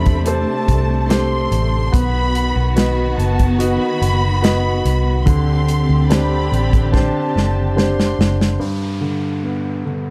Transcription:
Already playing: fingered electric bass E2, string section C3 A3 D4, grand piano A3 G4 A4 C5, violin section B5, downlifter
0.06 kick, closed hi-hat
0.26 grand piano G4 A4 C5, violin section A5, closed hi-hat
0.68 fingered electric bass C2, kick, closed hi-hat
1.09 grand piano G4 A4 C5, violin section C6, snare, closed hi-hat
1.52 fingered electric bass A1, closed hi-hat
1.92 fingered electric bass B1, string section D#3 B3 F#4, grand piano B3, violin section B5, kick, closed hi-hat
2.35 closed hi-hat
2.56 fingered electric bass B1
2.75 grand piano F#4 B4 D#5, violin section B5, snare, closed hi-hat
3.17 fingered electric bass F#1, violin section A5, closed hi-hat
3.39 kick, closed hi-hat
3.59 grand piano F#4 B4 D#5, violin section B5, closed hi-hat
4.01 fingered electric bass F#1, closed hi-hat
4.42 grand piano F#4 B4 D#5, snare, closed hi-hat
4.85 fingered electric bass C2, closed hi-hat
5.25 fingered electric bass D2, string section D3 C4 G4, grand piano D3, violin section C6, kick, closed hi-hat
5.68 closed hi-hat
5.89 fingered electric bass D2
6.08 grand piano D4 G4 C5, violin section B5, snare, closed hi-hat
6.52 fingered electric bass A1, closed hi-hat
6.73 kick, closed hi-hat
6.92 grand piano D4 G4 C5, violin section A5, kick, snare
7.36 fingered electric bass F#1, snare
7.76 grand piano D4 G4 C5, violin section C6, snare
8.00 snare
8.19 fingered electric bass F#1, snare
8.41 snare
8.60 grand piano G2, downlifter
9.01 grand piano D3
9.43 grand piano B3
9.85 grand piano D3

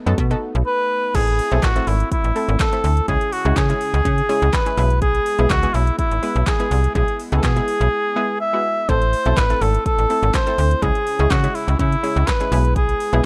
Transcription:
Already playing: supersaw synth A3 B3 D#4
0.06 fm bass F#2, synth pluck B3 D#4 F#4 A4, closed hi-hat
0.18 fm bass B2, kick, closed hi-hat
0.30 synth pluck B3 D#4 F#4 A4, closed hi-hat
0.55 fm bass B1, closed hi-hat
0.66 cor anglais B4
1.14 fm bass A1, synth pluck A3 C4 E4 A4, supersaw synth A3 C4 E4, cor anglais G#4, kick, closed hi-hat, crash
1.28 closed hi-hat
1.39 open hi-hat
1.51 fm bass B1, synth pluck A3 C4 E4 A4, closed hi-hat
1.62 fm bass A1, cor anglais F#4, kick, snare, clap, closed hi-hat
1.76 synth pluck A3 C4 E4 A4, closed hi-hat
1.87 fm bass G#1, cor anglais E4, open hi-hat
2.00 closed hi-hat
2.12 cor anglais E4, kick, closed hi-hat
2.24 fm bass A1, closed hi-hat
2.35 synth pluck A3 C4 E4 A4, open hi-hat
2.49 fm bass G#1, closed hi-hat
2.59 cor anglais A4, kick, snare, clap, closed hi-hat
2.73 synth pluck A3 C4 E4 A4, closed hi-hat
2.84 fm bass D2, open hi-hat
2.97 closed hi-hat
3.08 fm bass C#2, supersaw synth C#3 C#4 G#4, synth pluck G#3 C#4 E4 G#4, cor anglais G#4, kick, closed hi-hat
3.21 closed hi-hat
3.33 cor anglais F#4, open hi-hat
3.45 fm bass C#2, synth pluck G#3 C#4 E4 G#4, closed hi-hat
3.56 fm bass C#3, cor anglais G#4, kick, snare, clap, closed hi-hat
3.69 synth pluck G#3 C#4 E4 G#4, closed hi-hat
3.81 open hi-hat
3.94 fm bass C#2, closed hi-hat
4.05 fm bass C#3, kick, closed hi-hat
4.18 closed hi-hat
4.29 synth pluck G#3 C#4 E4 G#4, open hi-hat
4.42 fm bass C#2, closed hi-hat
4.53 cor anglais B4, kick, snare, clap, closed hi-hat
4.66 synth pluck G#3 C#4 E4 G#4, closed hi-hat
4.77 fm bass B1, synth pluck G#3 B3 E4 G#4, supersaw synth G#3 B3, open hi-hat
4.90 closed hi-hat
5.02 cor anglais G#4, kick, closed hi-hat
5.15 closed hi-hat
5.26 open hi-hat
5.38 fm bass B1, synth pluck G#3 B3 E4 G#4, closed hi-hat
5.50 fm bass C#2, cor anglais F#4, kick, snare, clap, closed hi-hat
5.63 synth pluck G#3 B3 E4 G#4, closed hi-hat
5.74 fm bass B1, cor anglais E4, open hi-hat
5.87 closed hi-hat
5.98 cor anglais E4, kick, closed hi-hat
6.11 fm bass G#1, closed hi-hat
6.22 synth pluck G#3 B3 E4 B4, open hi-hat
6.36 fm bass B1, closed hi-hat
6.46 cor anglais G#4, kick, snare, clap, closed hi-hat
6.60 synth pluck G#3 B3 E4 G#4, closed hi-hat
6.71 fm bass C2, supersaw synth E4, open hi-hat
6.84 closed hi-hat
6.95 fm bass B1, synth pluck G#3 B3 E4 G#4, cor anglais G#4, kick, closed hi-hat
7.08 closed hi-hat
7.20 open hi-hat
7.32 fm bass C#2, synth pluck G#3 B3 E4 G#4, closed hi-hat
7.37 cor anglais A4
7.43 fm bass B2, cor anglais G#4, kick, snare, clap, closed hi-hat
7.56 synth pluck G#3 B3 E4 G#4, closed hi-hat
7.68 open hi-hat
7.81 fm bass B1, closed hi-hat
8.16 synth pluck G#3 B3 E4 G#4
8.40 cor anglais E5
8.53 synth pluck G#3 B3 E4 F#4
8.89 fm bass A1, synth pluck A3 C4 E4 A4, supersaw synth A3 C4 E4, cor anglais C5, kick, closed hi-hat
9.02 closed hi-hat
9.13 open hi-hat
9.26 fm bass B1, synth pluck A3 C4 E4 A4, closed hi-hat
9.37 cor anglais B4, kick, snare, clap, closed hi-hat
9.50 synth pluck A3 C4 E4 A4, closed hi-hat
9.61 fm bass G#1, cor anglais A4, open hi-hat
9.75 closed hi-hat
9.86 cor anglais A4, kick, closed hi-hat
9.98 fm bass A1, closed hi-hat
10.10 synth pluck A3 C4 E4 A4, open hi-hat
10.23 fm bass G#1, closed hi-hat
10.34 cor anglais C5, kick, snare, clap, closed hi-hat
10.47 synth pluck A3 C4 E4 A4, closed hi-hat
10.58 fm bass D2, open hi-hat
10.71 closed hi-hat
10.82 fm bass C#2, supersaw synth C#3 C#4 G#4, synth pluck G#3 C#4 E4 G#4, cor anglais G#4, kick, closed hi-hat
10.95 closed hi-hat
11.07 open hi-hat
11.19 fm bass C#2, synth pluck G#3 C#4 E4 G#4, closed hi-hat
11.30 fm bass C#3, cor anglais F#4, kick, snare, clap, closed hi-hat
11.43 synth pluck G#3 C#4 E4 G#4, closed hi-hat
11.55 cor anglais E4, open hi-hat
11.68 fm bass C#2, closed hi-hat
11.79 fm bass C#3, cor anglais E4, kick, closed hi-hat
11.92 closed hi-hat
12.03 synth pluck G#3 C#4 E4 G#4, open hi-hat
12.16 fm bass C#2, closed hi-hat
12.27 cor anglais B4, kick, snare, clap, closed hi-hat
12.40 synth pluck G#3 C#4 E4 G#4, closed hi-hat
12.52 fm bass B1, synth pluck G#3 B3 E4 G#4, supersaw synth G#3 B3 E4, open hi-hat
12.65 closed hi-hat
12.76 cor anglais G#4, kick, closed hi-hat
12.89 closed hi-hat
13.00 open hi-hat
13.13 fm bass B1, synth pluck G#3 B3 E4 G#4, closed hi-hat

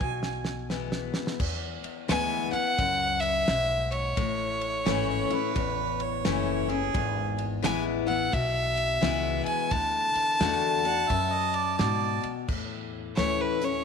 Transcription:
Already playing: harmonica G#5
0.01 upright bass B1, steel-string acoustic guitar B2, kick
0.23 snare
0.45 snare
0.70 steel-string acoustic guitar E3 G#3 B3 E4, snare
0.92 snare
1.14 snare
1.27 snare
1.40 upright bass E2, steel-string acoustic guitar E2, kick, crash
1.84 muted upright bass stroke, ride
2.08 upright bass D2, steel-string acoustic guitar E3 G#3 B3 E4, fiddle G#5, snare, ride
2.52 steel-string acoustic guitar B3 E4, fiddle F#5, muted upright bass stroke, ride
2.78 upright bass C#2, steel-string acoustic guitar F#2, kick, ride
3.21 fiddle E5, ride
3.48 upright bass B1, steel-string acoustic guitar G#2, snare, ride
3.91 fiddle C#5, ride
4.17 upright bass A1, steel-string acoustic guitar A2, kick, ride
4.61 ride
4.86 upright bass G#1, steel-string acoustic guitar E3 A3 C#4 E4, harmonica C#5, snare, ride
5.09 harmonica C#5
5.30 steel-string acoustic guitar C#4 E4, muted upright bass stroke, ride
5.35 harmonica B4
5.56 upright bass A1, steel-string acoustic guitar E2, kick, ride
6.00 harmonica C#5, ride
6.25 upright bass F#1, steel-string acoustic guitar E3 A3 C#4 E4, snare, ride
6.68 steel-string acoustic guitar C#4 E4, harmonica G#4, ride
6.94 upright bass G#1, steel-string acoustic guitar E2, kick, ride
7.38 ride
7.62 upright bass A1, steel-string acoustic guitar E3 G#3 B3 E4, fiddle G#5, snare, ride
8.07 steel-string acoustic guitar B3 E4, fiddle F#5, ride
8.32 upright bass B1, steel-string acoustic guitar B2, fiddle E5, kick, ride
8.77 ride
9.01 upright bass C#2, steel-string acoustic guitar E3 G#3 B3 E4, snare, ride
9.46 fiddle G#5, muted upright bass stroke, ride
9.71 upright bass D2, steel-string acoustic guitar D3, fiddle A5, kick, ride
10.15 muted upright bass stroke, ride
10.40 upright bass E2, steel-string acoustic guitar D3 A3 D4 F#4, snare, ride
10.83 steel-string acoustic guitar D4 F#4, harmonica F#5, ride
11.09 steel-string acoustic guitar F#2, upright bass F#2, harmonica E5, kick, ride
11.32 harmonica D#5
11.54 harmonica D5, ride
11.78 upright bass G#2, steel-string acoustic guitar B2, harmonica D5, snare, ride
12.24 muted upright bass stroke, ride
12.48 upright bass E2, steel-string acoustic guitar A2, kick, crash
13.17 upright bass D2, steel-string acoustic guitar E3 A3 C#4 E4, fiddle C#5, snare, closed hi-hat
13.41 fiddle B4
13.61 steel-string acoustic guitar C#4 E4, fiddle C#5, closed hi-hat

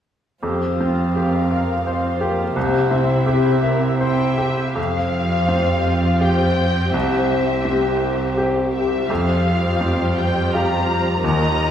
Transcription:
0.42 grand piano F2, cello section F2, harp F3, viola section C4 G4, violin section C5 F5
0.78 grand piano C4, harp F4, viola section F4
1.14 viola section F4, grand piano G4, violin section A#4, harp C5
1.51 grand piano F5, harp F5
1.86 viola section C4, violin section C5, grand piano C5, harp G5
2.21 viola section A#3, grand piano G4, harp F5
2.56 grand piano C2, cello section C3, harp C3, viola section C4 G4, violin section C5 E5
2.91 grand piano C4, harp C4, viola section E4
3.26 viola section C4, grand piano G4, harp G4, violin section C5
3.63 violin section A#4, harp C5, grand piano E5
3.99 viola section C4 E4, grand piano C5, violin section C5 E5 G5, harp E5
4.38 grand piano G4, harp C5
4.75 grand piano F2, cello section F2, harp F3, viola section C4 F4, violin section G4 C5 F5
5.14 harp F4
5.48 grand piano C4, harp C5
5.86 harp G5
6.20 grand piano F4 G4, harp F5, violin section G5
6.57 harp C5
6.92 cello section C2, grand piano C2, harp C3, viola section G4, violin section E5
7.31 harp C4
7.65 grand piano C4, harp G4
8.02 harp G5
8.38 grand piano G4, harp C5
8.73 harp G4, violin section E5
9.09 cello section F2, grand piano F2, harp F3, viola section G3 F4, violin section G4 C5 F5
9.45 harp F4
9.81 grand piano C4, harp C5
10.17 violin section G5, harp G5
10.53 grand piano F4 G4, harp F5, violin section A#5
10.89 harp C5
11.22 cello section D#2, grand piano D#2, harp D#3, violin section A#4 D#5 A#5
11.58 harp D#4

